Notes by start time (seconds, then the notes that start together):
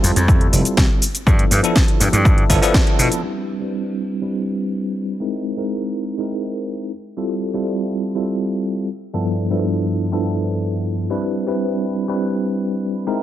Already playing: G3 C4 E4 F4 A4
0.04 F2, open hi-hat, shaker
0.16 F2, closed hi-hat, shaker
0.28 G3 C4 E4 F4 A4, kick, shaker
0.41 closed hi-hat
0.53 F1, open hi-hat, shaker
0.65 closed hi-hat, shaker
0.77 C2, kick, snare, shaker
1.02 open hi-hat, shaker
1.15 closed hi-hat, shaker
1.26 G2 F3 B3 D4 E4 A4, kick, shaker
1.39 closed hi-hat
1.51 G2, open hi-hat, shaker
1.63 F3 B3 D4 E4 A4, closed hi-hat, shaker
1.76 kick, snare, shaker
1.88 closed hi-hat
2.00 G2, open hi-hat, shaker
2.13 G2, closed hi-hat, shaker
2.25 F3 B3 D4 E4 A4, kick, shaker
2.38 closed hi-hat
2.49 G1 F3 B3 D4 E4 A4, kick, open hi-hat, shaker
2.61 F3 B3 D4 E4 A4, open hi-hat, shaker
2.74 kick, snare, shaker
2.87 closed hi-hat
2.99 B2, open hi-hat, shaker
3.12 closed hi-hat, shaker
3.23 G3 C4 D4 E4 B4, crash
3.60 G3 C4 D4 E4 B4
4.21 G3 C4 D4 E4 B4
5.20 G#3 C4 D#4 E4 A#4
5.57 G#3 C4 D#4 E4 A#4
6.18 G#3 C4 D#4 E4 A#4
7.17 G3 C4 E4 F4 A4
7.53 G3 C4 E4 F4 A4
8.15 G3 C4 E4 F4 A4
9.13 G2 F3 B3 D4 E4 A4
9.50 G2 F3 B3 D4 E4 A4
10.12 G2 F3 B3 D4 E4 A4
11.10 G3 C4 D4 E4 B4
11.47 G3 C4 D4 E4 B4
12.08 G3 C4 D4 E4 B4
13.07 G#3 C4 D#4 E4 A#4